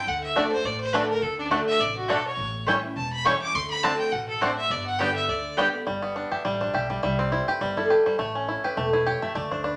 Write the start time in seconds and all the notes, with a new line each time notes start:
0.07 D2 D3 F#5
0.24 E5
0.35 D3 A3 D4 F#4 D5 A5
0.51 D4 F#4 C5
0.64 A1 A2 D5
0.80 C5
0.93 D3 A3 D4 F#4 B4 D5 A5
1.09 A#4
1.22 D2 D3 A4
1.39 D4
1.50 D3 A3 D4 F#4 D5 A5
1.68 E5
1.79 A1 C3 D5
1.97 F#4
2.08 B2 A3 D4 F#4 A4 D5 A5
2.27 C#5
2.37 A1 A2
2.67 E3 G3 A3 C#4 E4 C#5 G5
2.83 C#4 E4
2.96 E1 E2 A5
3.13 B5
3.25 E3 G3 A3 C#4 E4 C#5 G5 C#6
3.42 D6
3.54 D2 D3 C6
3.70 B5
3.83 D3 A3 C4 D4 F#4 D5 A5
3.99 G5
4.12 A1 B2 F#5
4.28 A4
4.41 A2 A3 C4 D4 F#4 C5 D5 A5
4.57 E5
4.70 G1 G2 D5
4.86 F#5
4.99 D3 G3 B3 D4 G4 D5 G5
5.16 E5
5.28 D2 D3 D5
5.57 D3 G3 B3 D4 G4 D5 G5
5.73 B3 G4
5.87 G1 G3
6.02 B3
6.16 D4
6.31 G4 E5
6.45 A1 G3 D5
6.61 D4 C5
6.74 B1 G4 E5
6.90 G3 D5
7.03 C2 G3 E5
7.19 C4 D5
7.32 E4 C5
7.48 G4 B4
7.61 G1 G3 C5
7.77 E4 A4
7.90 G4 B4
8.06 G3 C5
8.19 A1 A3 C#5
8.35 C#4
8.48 E4
8.64 G4 B4
8.77 E1 A3 A4
8.93 E4 B4
9.06 G4 C#5
9.22 A3 E5
9.35 D2 A3 D5
9.51 D4 C5
9.64 D4 B4